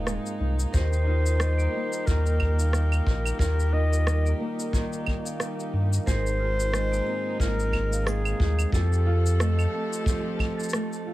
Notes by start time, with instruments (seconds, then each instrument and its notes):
Already playing: sub bass D#1, nylon-string guitar G#2 C4 D#4 G#4, string quartet G#3 C4 D#4, vibraphone A#3 F4 A#4 D#5 F5 A#5
0.07 nylon-string guitar G#3, cross-stick, shaker
0.26 shaker
0.40 sub bass C2, nylon-string guitar D#4
0.60 shaker
0.73 sub bass D#2, string quartet D#3 G4 A#4, nylon-string guitar D#3 G4, vibraphone A#4, clarinet C5, kick, shaker
0.93 shaker
1.06 nylon-string guitar D#4, vibraphone F4
1.26 shaker
1.40 nylon-string guitar G3, vibraphone D#5, cross-stick, shaker
1.58 vibraphone A#3, shaker
1.73 nylon-string guitar A#3, vibraphone A#5
1.93 shaker
2.07 sub bass D#2, nylon-string guitar D#3, clarinet A#4, kick, shaker
2.26 shaker
2.40 kick, claves
2.59 vibraphone F5, shaker
2.73 nylon-string guitar G3, cross-stick, shaker
2.92 claves, shaker
3.06 sub bass A#1, nylon-string guitar D#4, kick
3.25 claves, shaker
3.39 sub bass D#2, nylon-string guitar D#3 G4, clarinet A#4, vibraphone A#4, kick, shaker
3.60 shaker
3.73 nylon-string guitar D#4, vibraphone F4, clarinet D#5
3.93 shaker
4.06 nylon-string guitar G3, vibraphone D#5, cross-stick, shaker
4.26 vibraphone A#3, shaker
4.40 nylon-string guitar A#3, vibraphone A#5
4.60 shaker
4.73 nylon-string guitar D#3, kick, shaker
4.93 shaker
5.06 kick, claves
5.25 vibraphone F5, shaker
5.40 nylon-string guitar G3, cross-stick, shaker
5.60 shaker
5.73 sub bass G2, nylon-string guitar D#4
5.93 shaker
6.06 sub bass G#1, nylon-string guitar G#2 G#4, string quartet G#3 C4 D#4, vibraphone A#4, clarinet C5, kick, shaker
6.27 shaker
6.40 nylon-string guitar D#4, vibraphone F4
6.60 shaker
6.73 nylon-string guitar G#3, vibraphone D#5, cross-stick, shaker
6.92 vibraphone A#3, shaker
7.06 nylon-string guitar C4, vibraphone A#5
7.40 sub bass G#1, nylon-string guitar G#2, clarinet A#4, kick, shaker
7.60 shaker
7.73 kick, claves
7.92 vibraphone F5, shaker
8.06 nylon-string guitar G#3, clarinet G#4, cross-stick, shaker
8.25 claves, shaker
8.40 sub bass D#2, nylon-string guitar D#4, kick
8.59 claves, shaker
8.72 sub bass F2, string quartet F3 G4 A4, nylon-string guitar F3 G4, vibraphone A4, clarinet A4, kick, shaker
8.93 shaker
9.06 vibraphone F4, nylon-string guitar F4
9.26 shaker
9.39 nylon-string guitar A3, vibraphone D#5, cross-stick, shaker
9.58 vibraphone A3, claves, shaker
9.73 nylon-string guitar C4, vibraphone A5
9.93 shaker
10.06 nylon-string guitar F3, kick, shaker
10.39 kick, claves
10.58 vibraphone A4, shaker
10.63 shaker
10.69 shaker
10.73 nylon-string guitar A3, cross-stick, shaker
10.92 vibraphone A5, shaker
11.07 nylon-string guitar F4